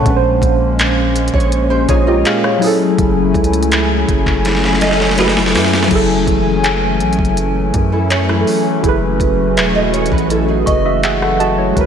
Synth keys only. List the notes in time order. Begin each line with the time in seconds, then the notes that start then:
Already playing: A4 F#5
0.02 A#2 G#3
0.07 C#4 B4
0.16 C5
1.90 F4 C#5
2.08 G4 D#5
2.26 G#4 F5
2.44 F4 C#5
2.59 F#3 E4
2.64 G#4 A4
5.17 F#3 E4 G#4
5.21 A4
5.88 F#3 E4
5.93 G#4 A4
8.80 F#3 E4
8.86 G#4 B4
10.67 D#5
10.85 F#4 D#5 E5
11.04 G#4 E5 F#5
11.22 A4 F#5
11.40 F#4 D#5 A5
11.58 E4 C#5
11.73 G#3 F#4
11.78 A#4 B4